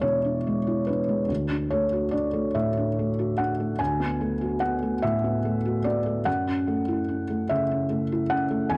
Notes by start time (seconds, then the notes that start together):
Already playing: E2 G#3 D4 E4 D5 E5
0.01 B2 C#5
0.24 D4
0.47 G#3
0.67 E4
0.87 D4 B4
1.09 G#3
1.28 D2
1.51 D4
1.71 A3 C#5
1.93 F#4
2.11 D4 D5
2.33 A3
2.55 A2 E5
2.77 D4
2.99 A3
3.19 F#4
3.38 D4 F#5
3.60 A3
3.79 D2 G#5
4.00 B3
4.21 A3
4.41 F#4
4.60 B3 F#5
4.83 A3
5.02 A2 E5
5.24 B3
5.45 A3
5.65 F#4
5.84 B3 D5
6.06 A3
6.25 F#2 F#5
6.47 C#4
6.68 A3
6.88 E4
7.08 C#4
7.30 A3
7.49 C#3 E5
7.71 C#4
7.90 A3
8.12 E4
8.30 C#4 F#5
8.51 A3
8.70 E2 G#5